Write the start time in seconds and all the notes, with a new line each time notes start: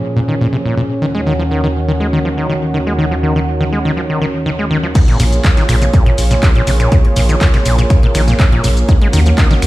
Already playing: A#2 F3 C#4 G#4
0.16 A#2
0.28 D#3
0.41 A#2
0.53 C3
0.66 A#2
0.77 A#2
1.02 D#2 D#3 F#4
1.15 G#3
1.26 D#3
1.39 F3
1.51 D#3
1.64 D#3
1.88 D#3
2.00 G#3
2.13 D#3
2.25 F3
2.38 D#3
2.49 D#3
2.74 D#3
2.87 G#3
2.99 D#3
3.11 F3
3.23 D#3
3.36 D#3
3.61 D#3
3.72 G#3
3.85 D#3
3.97 F3
4.10 D#3
4.22 D#3
4.46 D#3
4.59 G#3
4.71 D#3
4.83 F3
4.95 C3 A#3 F4 G#4 C#5, kick, closed hi-hat, crash, shaker
5.08 A#2, closed hi-hat
5.20 A#1 A#2, open hi-hat, shaker
5.33 closed hi-hat, shaker
5.44 A#2, kick, clap, closed hi-hat, shaker
5.57 D#3, snare, closed hi-hat
5.69 A#1 A#2, finger snap, open hi-hat, shaker
5.82 C3, closed hi-hat, shaker
5.94 A#2, kick, closed hi-hat, shaker
6.06 A#2, closed hi-hat
6.18 A#1, open hi-hat, shaker
6.31 A#2, snare, closed hi-hat, shaker
6.43 A#1 D#3, kick, clap, closed hi-hat, shaker
6.55 A#2, closed hi-hat
6.67 A#1 C3, open hi-hat, shaker
6.80 A#2, finger snap, shaker
6.92 A#2, kick, closed hi-hat, shaker
7.05 closed hi-hat
7.16 A#1 A#2, open hi-hat, shaker
7.29 D#3, closed hi-hat, shaker
7.41 A#2, kick, clap, closed hi-hat, shaker
7.54 C3, snare, closed hi-hat
7.66 A#1 A#2, open hi-hat, shaker
7.78 A#2, closed hi-hat, shaker
7.90 finger snap, kick, closed hi-hat, shaker
8.03 A#2, closed hi-hat
8.15 A#1 D#3, finger snap, open hi-hat, shaker
8.28 A#2, snare, closed hi-hat, shaker
8.39 A#1 C3, kick, clap, closed hi-hat, shaker
8.52 A#2, closed hi-hat
8.64 A#1 A#2, open hi-hat, shaker
8.77 closed hi-hat, shaker
8.89 D#3 C#4 F#4, kick, closed hi-hat, shaker
9.01 G#3, closed hi-hat
9.13 D#2 D#3, open hi-hat, shaker
9.26 F3, closed hi-hat, shaker
9.38 D#3, kick, clap, closed hi-hat, shaker
9.51 D#3, snare, closed hi-hat
9.62 D#2, finger snap, open hi-hat, shaker